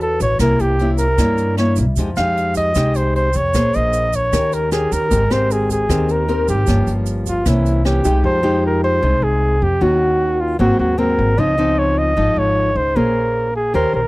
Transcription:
Already playing: E2 E3 C#4 F#4 B4
0.00 A4, closed hi-hat
0.20 A1 C#5, kick, closed hi-hat, shaker
0.39 C2 C3 A#3 C#4 E4 A#4, kick, cross-stick, closed hi-hat, shaker
0.59 C2 G4, closed hi-hat, shaker
0.79 A#3 C#4 E4, closed hi-hat
0.98 A#4, kick, closed hi-hat, shaker
1.18 G2 G3 A#3 C#4 E4, kick, cross-stick, closed hi-hat, shaker
1.38 closed hi-hat, shaker
1.57 A#3 C#4 E4 C#5, cross-stick, closed hi-hat
1.76 C2, kick, closed hi-hat, shaker
1.96 F2 F3 G#3 D#4 G4, kick, closed hi-hat, shaker
2.16 F2 G#3 D#4 G4 F5, cross-stick, closed hi-hat, shaker
2.37 closed hi-hat
2.55 D#5, kick, closed hi-hat, shaker
2.75 C2 C3 G#3 D#4 G4, kick, cross-stick, closed hi-hat, shaker
2.94 C5, closed hi-hat, shaker
3.16 C5, closed hi-hat
3.33 F2 C#5, kick, closed hi-hat, shaker
3.54 A#1 A#3 C#4 G#4 C5, kick, cross-stick, closed hi-hat, shaker
3.73 A#1 D#5, closed hi-hat, shaker
3.93 closed hi-hat, shaker
4.13 C#5, kick, closed hi-hat, shaker
4.33 D#2 D#3 C#4 G4 A#4, kick, cross-stick, closed hi-hat, shaker
4.52 A#4, closed hi-hat, shaker
4.71 C#4 G4 G#4 A#4, cross-stick, closed hi-hat, shaker
4.92 D#2 A#4, kick, closed hi-hat, shaker
5.10 G#1 G#3 C4 G4 A#4, kick, closed hi-hat, shaker
5.30 G#1 C4 G4 A#4 C5, cross-stick, closed hi-hat, shaker
5.50 G#4, closed hi-hat, shaker
5.70 G#4, kick, closed hi-hat, shaker
5.89 D#2 D#3 C4 G4 A#4, kick, cross-stick, closed hi-hat, shaker
6.09 A#4, closed hi-hat, shaker
6.28 C4 G4 A#4, closed hi-hat
6.48 G#1 G4, kick, closed hi-hat, shaker
6.67 G1 G2 F3 A#3 C#4, kick, cross-stick, closed hi-hat, shaker
6.87 G1, closed hi-hat, shaker
7.06 closed hi-hat, shaker
7.26 F4, kick, closed hi-hat, shaker
7.46 C2 C3 E3 A#3 C#4 E4, kick, cross-stick, closed hi-hat, shaker
7.66 closed hi-hat, shaker
7.85 E3 A#3 C#4 G4, cross-stick, closed hi-hat
8.04 C2 G#3 D#4 G4, kick, closed hi-hat, shaker
8.24 F2 F3 C5
8.43 G#3 D#4 G4
8.66 A#4
8.84 C5
9.02 C2 C3 G#3 D#4
9.22 C2 G#4
9.62 F2 G4
9.81 D#2 D#3 A#3 C#4 F#4
10.41 F4
10.59 G#1 G#2 F#3 A#3 C4 F#4
10.79 D#2 F#4
10.98 F#3 A#3 C4 A#4
11.19 G#1
11.38 C#2 C#3 F3 C4 D#4 D#5
11.58 F3 C4 D#4
11.78 C#5
11.98 D#5
12.17 G#1 G#2 F3 D#4
12.36 G#1 C#5
12.75 C#2 C5
12.96 A#1 A#3 C#4 G#4 A#4 C5
13.56 G#4
13.73 D#2 D#3 C#4 G4 A#4 C5
13.93 A#1 A#4

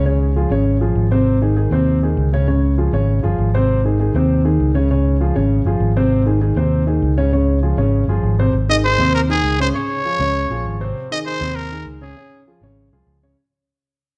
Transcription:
Already playing: C#2
0.05 C#3 C#4 C#5
0.36 F3 F4 G#4
0.50 G#1 C#3 C#4 C#5
0.81 F3 F4 G#4
0.95 G#1
1.11 C3 C4 C5
1.42 D#3 D#4 G#4
1.56 D#3 D#4 G#4
1.71 D#2 C3 C4 C5
2.03 D#3 D#4 G#4
2.17 C#2
2.33 C#3 C#4 C#5
2.48 C#3 C#4 C#5
2.78 F3 F4 G#4
2.93 G#1 C#3 C#4 C#5
3.23 G1 F3 F4 G#4
3.38 G#1
3.54 C3 C4 C5
3.85 D#3 D#4 G#4
4.00 D#3 D#4 G#4
4.15 D#2 C3 C4 C5
4.45 D#3 D#4 G#4
4.60 C#2
4.74 C#3 C#4 C#5
4.91 C#3 C#4 C#5
5.20 F3 F4 G#4
5.35 G#1 C#3 C#4 C#5
5.65 G1 F3 F4 G#4
5.80 G#1
5.96 C3 C4 C5
6.26 D#3 D#4 G#4
6.41 D#3 D#4 G#4
6.56 D#2 C3 C4 C5
6.87 D#3 D#4 G#4
7.02 C#2
7.17 C#3 C#4 C#5
7.33 C#3 C#4 C#5
7.62 F3 F4 G#4
7.77 G#1 C#3 C#4 C#5
8.08 G1 F3 F4 G#4
8.23 G#1
8.39 C3 C4 C5
8.53 G#1
8.69 D#3 D#4 G#4 D#5
8.85 D#3 D#4 G#4 C5
8.98 D#2 C3 C4 C5
9.15 A#4
9.30 D#3 D#4 G#4
9.43 C#2
9.60 C#3 C#4 C5 C#5
9.74 C#3 C#4 C#5
10.05 F3 F4 G#4
10.19 C#2 C#3 C#4 C#5
10.50 A#1 F3 F4 G#4
10.65 G#1
10.81 C3 C4 C5
11.11 D#3 D#4 G#4 D#5
11.26 D#3 D#4 G#4 C5
11.41 D#2 C3 C4 C5
11.56 A#4
11.72 D#3 D#4 G#4
11.85 C#2
12.01 C#3 C#4 G#4 C#5
12.17 C#3 C#4 C#5
12.47 F3 F4 G#4
12.61 G#1 C#3 C#4 C#5
12.92 C2 F3 F4 G#4
13.07 C#2
13.23 C#3 C#4 C#5

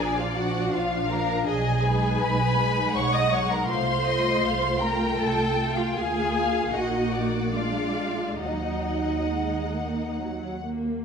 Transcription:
Already playing: A#1 F3 D4 G#4 D5
0.00 G#5
0.17 F4 F5
0.35 F3 D4 F#4 F#5
0.72 A#1 F4 F5
1.09 F3 D4 A#4 A#5
1.47 B1 G#4 D#5 G#5
1.83 G#3 D#4 B4
2.22 B1 B4 G#5 B5
2.57 G#3 D#4
2.94 B1 C#5 F#5 C#6
3.13 D#5 D#6
3.31 G#3 D#4 C#5 C#6
3.51 A#4 A#5
3.68 C2 A3 F4 C5 F5 C6
4.06 A3 F4 D#5
4.44 C2 F5
4.82 A3 F4 A#4 G5 A#5
5.20 C2 A4 A5
5.59 A3 F4
5.75 F4 F5
5.95 D2 A#3 F4 G#4 F5 G#5
6.36 F5
6.73 A#1 A#3 D#4 F#4 D#5 F#5
7.14 D5
7.54 G#3 D4 F4 F5
8.42 D#2 F#3 D#4 D#5 F#5
9.33 G#3
9.77 A#3
10.21 F#3
10.67 A#3

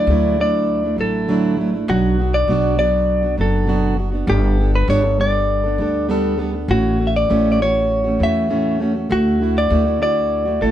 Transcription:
Already playing: D5
0.07 D2 D3 F#3 A3 D4
0.11 E4
0.38 F#3 A3 D4 E4 D5
0.83 A3 D4 E4
0.96 A1 F#3 A3 D4 E4
1.01 A4
1.28 D3 F#3 A3 D4 E4
1.57 F#3 A3 D4 E4
1.73 A3 D4 E4
1.88 B1 B2 F#3 B3 D4 F#4
2.19 F#3 B3 D4 F#4
2.34 D5
2.48 B1 B2 F#3 B3 D4 F#4
2.77 F#3 B3 D4 F#4 D5
3.23 B3 D4 F#4
3.37 F#1 F#3 B3 D4 F#4 A4
3.67 B2 F#3 B3 D4 F#4
3.96 F#3 B3 D4 F#4
4.12 B3 D4 F#4
4.27 G1 G3 B3 D4 G4 A4
4.58 G3 B3 D4 A4
4.75 B4
4.88 G1 G3 B3 D4 A4 C#5
5.03 B3 D4 A4
5.19 G3 B3 D4 A4 D5
5.64 B3 D4 A4
5.78 D2 G3 B3 D4 A4
6.09 G3 B3 D4 A4
6.38 G3 B3 D4 A4
6.53 B3 D4 A4
6.68 A1 A2 E3 A3 C#4 F#4
6.98 E3 A3 C#4 F#4
7.07 E5
7.16 D5
7.29 A1 A2 E3 A3 C#4 F#4
7.52 D5
7.60 E3 A3 C#4 F#4 C#5
8.04 A3 C#4 F#4
8.19 E2 E3 A3 C#4 F#4
8.23 E5
8.49 A2 E3 A3 C#4 F#4
8.79 E3 A3 C#4 F#4
8.94 A3 C#4 F#4
9.09 D2 D3 A3 E4 F#4
9.40 D3 A3 E4 F#4
9.58 D5
9.70 D2 D3 A3 E4 F#4
9.85 A3 E4 F#4
9.99 D3 A3 E4 F#4 D5
10.45 A3 E4 F#4
10.60 A1 D3 A3 E4 F#4 A4

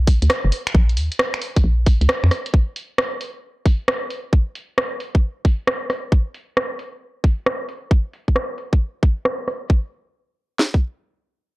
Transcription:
Already playing: B1
0.07 kick, open hi-hat
0.22 D2, closed hi-hat
0.30 cross-stick, closed hi-hat
0.45 F#1
0.52 open hi-hat
0.67 finger snap, closed hi-hat
0.75 A#1, kick
0.89 closed hi-hat
0.97 D#2, open hi-hat
1.12 closed hi-hat
1.19 cross-stick
1.34 finger snap, closed hi-hat
1.42 open hi-hat
1.56 kick, closed hi-hat
1.64 A#1
1.86 kick, open hi-hat
2.01 C#2, closed hi-hat
2.09 cross-stick, closed hi-hat
2.24 F2, finger snap
2.31 cross-stick, open hi-hat
2.46 closed hi-hat
2.54 kick
2.76 open hi-hat
2.98 cross-stick
3.21 open hi-hat
3.66 kick, open hi-hat
3.88 cross-stick
4.10 open hi-hat
4.33 kick
4.55 open hi-hat
4.78 cross-stick
5.00 open hi-hat
5.15 kick
5.45 kick, open hi-hat
5.67 cross-stick
5.90 cross-stick, open hi-hat
6.12 kick
6.34 open hi-hat
6.57 cross-stick
6.79 open hi-hat
7.24 kick, open hi-hat
7.46 cross-stick
7.69 open hi-hat
7.91 kick
8.13 open hi-hat
8.28 kick
8.36 cross-stick
8.58 open hi-hat
8.73 kick
9.03 kick
9.25 cross-stick
9.48 cross-stick, open hi-hat
9.70 kick
10.59 snare
10.74 kick

